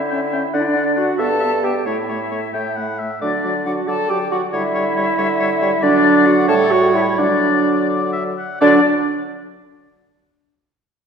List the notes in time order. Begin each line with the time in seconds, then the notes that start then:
Already playing: D3 E4 E5
0.11 C#4 G5
0.33 C#4 G5
0.53 D3 D4 D5 F#5
0.61 E4
0.68 D4
0.74 D4 F#5
0.96 D4 F#4 F#5
1.18 G2 B3 A4 E5 A5
1.40 B3 E5
1.63 B3 G4 E5 G5
1.86 A2 A3 E4 C#5 E5
2.09 A3 C#5
2.31 A3 C#5
2.54 A2 A3 G5
2.76 A3 F#5
2.99 A3 E5
3.22 D3 F#3 D4 D5
3.44 F#3 D5
3.65 F#3 F#4 D5 F#5
3.88 D3 F#3 A4 D5 A5
4.09 F#3 G4 D5 G5
4.31 F#3 F#4 D5 F#5
4.53 D3 G3 E4 C#5 E5
4.75 G3 C#5
4.97 G3 C#5
5.18 D3 G3 C#5
5.40 G3 C#5
5.62 G3 C#5
5.83 D3 F#3 D4 D5
6.26 F#4 F#5
6.48 A2 G3 A4 C#5 A5
6.71 F#4 F#5
6.94 E4 E5
7.18 D3 F#3 D4 D5
7.89 D5
8.13 E5
8.38 F#5
8.61 D3 F#3 D4 D5